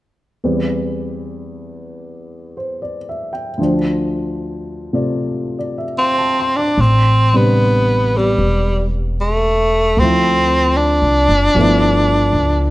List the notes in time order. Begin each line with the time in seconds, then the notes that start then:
0.44 E2 E3 G3 C4 B4
2.57 C5
2.82 D5
3.09 E5
3.33 G5
3.57 D2 D3 F3
3.62 D4 C5
4.93 C3 A3 F4 D5
5.59 D5
5.78 E5
5.99 C4 F5
6.18 A5
6.39 C6
6.56 D4 D6
6.78 A1 C4
7.33 C3 G3 B3 D4
8.15 G3 B3
8.38 E1
9.21 A3
9.97 D2 C4
10.01 F3 A3 C4 E4
10.77 D4
11.02 C2
11.29 F#1
11.55 G1 F3 A3 B3
11.60 E4
12.33 C#2